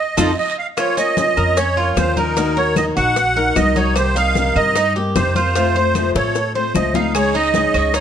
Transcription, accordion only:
0.00 0.36 D#5 medium
0.38 0.56 D#5 medium
0.58 0.67 F5 medium
0.78 0.96 C#5 medium
0.97 1.59 D#5 loud
1.57 1.98 C#5 medium
1.97 2.18 C5 medium
2.17 2.58 A#4 medium
2.57 2.75 C#5 medium
2.77 2.86 D#5 medium
2.97 3.58 F#5 loud
3.56 3.77 D#5 medium
3.76 3.95 C#5 medium
3.96 4.17 C5 medium
4.16 4.57 F5 loud
4.56 4.93 D#5 loud
5.16 5.34 C5 medium
5.36 6.11 C5 medium
6.16 6.53 C#5 medium
6.55 6.73 C5 medium
6.75 6.93 D#5 medium
6.94 7.13 F5 medium
7.15 7.35 C#5 medium
7.35 7.96 D#5 loud
7.95 8.00 C#5 medium

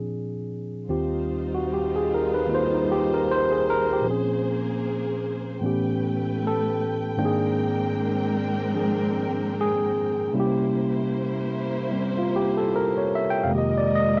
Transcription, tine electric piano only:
0.00 0.87 A#2 soft
0.00 0.88 F3 soft
0.00 0.88 C4 soft
0.00 0.89 D4 soft
0.00 0.90 G#4 soft
0.89 4.06 D#2 soft
0.89 2.46 D#3 soft
0.89 4.06 C4 soft
0.89 2.49 F4 soft
0.89 1.72 G4 soft
1.55 1.67 F#4 medium
1.74 1.97 G4 medium
1.96 2.21 G#4 medium
2.14 2.30 A#4 medium
2.34 2.47 B4 medium
2.47 4.05 D#3 soft
2.47 4.06 A#3 soft
2.47 2.73 D#4 soft
2.47 4.07 F4 soft
2.55 2.77 C5 medium
2.74 3.00 D#4 soft
2.92 3.09 G4 medium
3.14 3.26 A#4 medium
3.32 3.55 C5 medium
3.51 3.78 G#4 medium
3.70 3.87 A#4 medium
3.93 4.05 G4 medium
4.01 5.60 A#2 soft
4.01 5.62 F3 soft
4.07 5.63 C4 soft
4.07 5.63 C#4 soft
4.07 5.61 G#4 medium
5.61 7.18 A2 soft
5.61 7.18 E3 soft
5.61 7.19 B3 soft
5.61 7.19 C#4 soft
5.66 7.20 G4 soft
6.47 7.18 A4 medium
7.17 10.31 G#2 soft
7.17 10.32 D#3 soft
7.17 10.32 A#3 soft
7.17 8.73 C4 soft
7.17 8.74 D4 soft
7.17 10.32 G5 medium
7.25 8.49 G#4 medium
8.73 10.31 F3 soft
8.73 10.31 C4 soft
8.73 10.32 D4 soft
8.73 9.60 G#4 soft
9.61 10.32 G#4 medium
10.33 13.44 C3 soft
10.33 11.90 G3 soft
10.33 13.50 A#3 soft
10.33 13.51 C#4 soft
10.33 13.51 E4 soft
10.40 11.64 G4 medium
11.91 13.50 G3 soft
11.91 13.51 C4 soft
12.18 12.44 F4 medium
12.36 12.53 G4 medium
12.57 12.70 A4 medium
12.76 12.99 A#4 medium
12.98 13.24 C#5 medium
13.15 13.19 E5 medium
13.30 13.44 G5 medium
13.44 14.20 F2 soft
13.44 14.20 C3 soft
13.44 13.51 F5 medium
13.48 14.20 D#3 soft
13.48 14.20 G#3 soft
13.48 14.20 A#3 soft
13.55 14.20 G4 soft
13.55 13.80 D#5 medium
13.78 14.03 D5 medium
13.95 14.12 D#5 medium

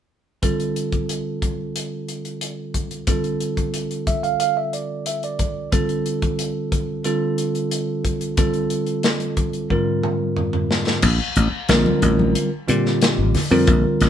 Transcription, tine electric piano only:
0.42 3.04 D3 medium
0.42 3.04 G3 soft
0.42 3.04 C4 soft
0.42 3.04 F4 soft
0.42 3.04 A4 medium
3.08 5.69 D3 medium
3.08 5.69 G3 soft
3.08 5.69 C4 soft
3.08 5.69 F4 soft
3.08 5.69 A4 medium
4.07 4.23 E5 medium
4.23 4.39 F5 medium
4.40 4.56 F5 medium
4.57 4.72 E5 medium
4.73 5.04 D5 soft
5.07 5.22 E5 soft
5.24 5.70 D5 medium
5.72 7.02 D3 medium
5.72 7.02 G3 medium
5.72 7.02 C4 medium
5.72 7.03 F4 soft
5.72 7.03 A4 medium
7.04 8.35 D3 medium
7.04 8.35 G3 medium
7.04 8.35 C4 medium
7.04 8.35 F4 medium
7.04 8.35 A4 medium
8.37 9.67 D3 medium
8.37 9.68 G3 medium
8.37 9.68 C4 medium
8.37 9.68 F4 medium
8.37 9.68 A4 medium
9.70 11.00 G#2 medium
9.70 11.00 D3 medium
9.70 11.00 G3 medium
9.70 11.00 C4 medium
9.70 11.00 F4 medium
9.70 11.00 A#4 medium
11.69 12.49 D3 medium
11.69 12.49 G3 medium
11.69 12.49 C4 medium
11.69 12.49 F4 medium
11.69 12.49 A#4 medium
12.68 13.35 D3 medium
12.68 13.35 G3 medium
12.68 13.35 C4 medium
12.68 13.35 F4 medium
12.68 13.35 G4 medium
13.51 14.10 D3 medium
13.51 14.10 G3 medium
13.51 14.10 C4 medium
13.51 14.10 F4 medium
13.51 14.10 A#4 medium

